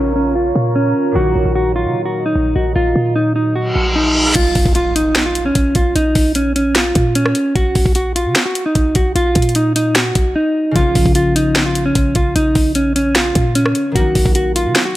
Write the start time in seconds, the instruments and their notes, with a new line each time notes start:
Already playing: 808-style bass A#1, harp C#3 F3 A#3 C#4, clean electric guitar C#4, ambient pad F4 A#4 C#5 A#5, downlifter
0.16 clean electric guitar C#4
0.35 clean electric guitar F4
0.56 808-style bass A#2
0.75 clean electric guitar C#4
1.12 harp A#2 D#3, clean electric guitar F#4, ambient pad D#5
1.16 808-style bass A#1, ambient pad F#3, harp F#3 A#3
1.20 harp D#4
1.36 808-style bass A#1
1.46 808-style bass A#1
1.55 clean electric guitar F#4
1.76 clean electric guitar F4
1.86 808-style bass C#3
2.05 clean electric guitar F#4
2.26 clean electric guitar D#4
2.36 808-style bass A#1
2.56 808-style bass A#1, clean electric guitar F#4
2.76 808-style bass A#1, clean electric guitar F4
2.96 808-style bass A#2
3.16 clean electric guitar D#4
3.36 clean electric guitar D#4
3.56 clean electric guitar F#4, reverse cymbal
3.76 808-style bass A#1
3.96 clean electric guitar D#4
4.36 808-style bass A#1, clean electric guitar F4, kick, closed hi-hat, crash, impact
4.55 808-style bass A#1, kick, open hi-hat
4.66 808-style bass A#1, kick
4.75 clean electric guitar F4, closed hi-hat
4.96 clean electric guitar D#4, closed hi-hat
5.15 finger snap, snare, closed hi-hat
5.26 clean electric guitar F4
5.35 closed hi-hat
5.46 clean electric guitar C#4
5.55 808-style bass A#1, kick, closed hi-hat
5.75 808-style bass A#1, clean electric guitar F4, kick, closed hi-hat
5.96 808-style bass A#1, clean electric guitar D#4, closed hi-hat
6.15 808-style bass A#1, kick, open hi-hat
6.35 clean electric guitar C#4, closed hi-hat
6.56 clean electric guitar C#4, closed hi-hat
6.75 clean electric guitar F4, finger snap, snare, closed hi-hat
6.95 808-style bass A#2, kick, closed hi-hat
7.15 clean electric guitar C#4, closed hi-hat
7.26 cross-stick
7.35 closed hi-hat
7.55 808-style bass A#1, clean electric guitar F#4, kick, closed hi-hat
7.75 808-style bass A#1, kick, open hi-hat
7.86 808-style bass A#1, kick
7.95 clean electric guitar F#4, closed hi-hat
8.16 clean electric guitar F4, closed hi-hat
8.26 808-style bass C#3
8.35 finger snap, snare, closed hi-hat
8.46 clean electric guitar F#4
8.55 closed hi-hat
8.66 clean electric guitar D#4
8.75 808-style bass A#1, kick, closed hi-hat
8.95 808-style bass A#1, clean electric guitar F#4, kick, closed hi-hat
9.16 808-style bass A#1, clean electric guitar F4, closed hi-hat
9.35 808-style bass A#2, kick, closed hi-hat, open hi-hat
9.42 closed hi-hat
9.49 closed hi-hat
9.55 clean electric guitar D#4, closed hi-hat
9.76 clean electric guitar D#4, closed hi-hat
9.95 clean electric guitar F#4, finger snap, snare, closed hi-hat
10.15 808-style bass A#1, kick, closed hi-hat
10.36 clean electric guitar D#4
10.71 harp C#3 F3
10.76 808-style bass A#1, harp A#3 C#4, clean electric guitar F4, kick, closed hi-hat
10.95 808-style bass A#1, kick, open hi-hat
11.06 808-style bass A#1, kick
11.15 clean electric guitar F4, closed hi-hat
11.36 clean electric guitar D#4, closed hi-hat
11.55 finger snap, snare, closed hi-hat
11.66 clean electric guitar F4
11.75 closed hi-hat
11.86 clean electric guitar C#4
11.95 808-style bass A#1, kick, closed hi-hat
12.15 808-style bass A#1, clean electric guitar F4, kick, closed hi-hat
12.36 808-style bass A#1, clean electric guitar D#4, closed hi-hat
12.55 808-style bass A#1, kick, open hi-hat
12.75 clean electric guitar C#4, closed hi-hat
12.96 clean electric guitar C#4, closed hi-hat
13.15 clean electric guitar F4, finger snap, snare, closed hi-hat
13.35 808-style bass A#2, kick, closed hi-hat
13.55 clean electric guitar C#4, closed hi-hat
13.66 cross-stick
13.75 closed hi-hat
13.92 808-style bass A#1, harp D#3 F#3, clean electric guitar F#4
13.96 harp A#3, kick, closed hi-hat
14.00 harp D#4
14.15 808-style bass A#1, kick, open hi-hat
14.26 808-style bass A#1, kick
14.35 clean electric guitar F#4, closed hi-hat
14.56 clean electric guitar F4, closed hi-hat
14.66 808-style bass C#3
14.75 finger snap, snare, closed hi-hat
14.85 clean electric guitar F#4